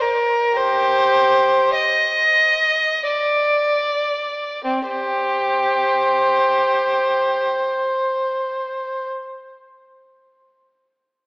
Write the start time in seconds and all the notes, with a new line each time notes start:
0.01 A#4
0.57 G4 C5
1.75 D#5
3.07 D5
4.64 C4
4.87 G4 C5